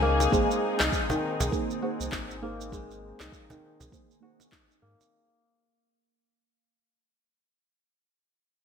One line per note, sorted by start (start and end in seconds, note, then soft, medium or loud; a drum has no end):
0.00 0.27 C#2 medium
0.00 0.32 C#3 medium
0.00 0.37 D#3 medium
0.00 0.28 A#3 loud
0.00 1.95 A#3 medium
0.00 0.32 C#4 medium
0.00 0.29 D#4 medium
0.00 0.79 D#4 medium
0.00 5.12 D#4 medium
0.00 0.88 F#4 medium
0.00 0.29 G#4 medium
0.00 0.37 G#4 medium
0.00 5.12 G#4 medium
0.00 0.30 C5 loud
0.00 2.26 G#5 medium
0.20 cajon slap medium
0.20 shaker medium
0.31 0.45 G#1 medium
0.31 1.12 G#3 medium
0.31 0.60 A#3 medium
0.31 5.12 C4 medium
0.31 0.60 D#4 medium
0.31 0.61 G#4 medium
0.31 0.61 C5 medium
0.31 kick loud
0.31 shaker medium
0.51 shaker soft
0.80 0.89 C2 medium
0.80 2.12 D#4 medium
0.80 cajon slap medium
0.80 clap medium
0.80 shaker medium
0.92 kick medium
0.92 shaker medium
1.10 3.44 D#3 medium
1.10 cajon bass medium
1.10 cajon slap medium
1.10 shaker soft
1.40 1.49 C2 medium
1.40 2.77 G#4 medium
1.40 cajon bass medium
1.40 shaker medium
1.51 1.79 A#3 loud
1.51 1.79 D#4 medium
1.51 1.79 G#4 medium
1.51 1.80 C5 loud
1.51 kick loud
1.51 shaker soft
1.71 shaker soft
1.81 2.39 A#3 medium
1.81 2.39 D#4 medium
1.81 3.29 F#4 medium
1.81 2.39 G#4 medium
1.81 2.40 C5 loud
2.00 2.09 C2 medium
2.00 shaker medium
2.12 3.13 G#1 medium
2.12 3.20 D#4 medium
2.12 kick medium
2.12 cajon slap medium
2.12 clap medium
2.12 shaker medium
2.31 shaker soft
2.41 2.69 A#3 medium
2.41 4.35 A#3 medium
2.41 2.69 D#4 medium
2.41 2.69 G#4 medium
2.41 2.70 C5 medium
2.61 shaker medium
2.71 3.52 G#3 medium
2.71 2.91 A#3 medium
2.71 2.92 D#4 medium
2.71 2.92 G#4 medium
2.71 2.92 C5 medium
2.71 kick loud
2.71 shaker medium
2.91 shaker soft
3.20 3.29 C2 medium
3.20 4.52 D#4 medium
3.20 clap medium
3.20 shaker medium
3.32 kick medium
3.32 shaker medium
3.50 5.17 D#3 medium
3.50 cajon bass medium
3.50 cajon slap medium
3.50 shaker soft
3.80 3.89 C2 medium
3.80 5.16 G#4 medium
3.80 cajon bass medium
3.80 shaker medium
3.91 4.19 A#3 loud
3.91 4.19 D#4 medium
3.91 4.19 G#4 medium
3.91 4.20 C5 loud
3.91 kick loud
3.91 shaker medium
4.11 shaker soft
4.20 5.08 A#3 medium
4.20 5.09 D#4 medium
4.20 5.69 F#4 medium
4.20 5.09 G#4 medium
4.20 5.10 C5 loud
4.40 cajon slap medium
4.40 shaker medium
4.52 6.15 D#4 medium
4.52 kick medium
4.52 clap medium
4.52 shaker medium
4.69 cajon slap soft
4.69 shaker soft
4.82 4.95 G#2 medium
4.82 6.75 A#3 medium
5.01 cajon slap medium
5.01 shaker medium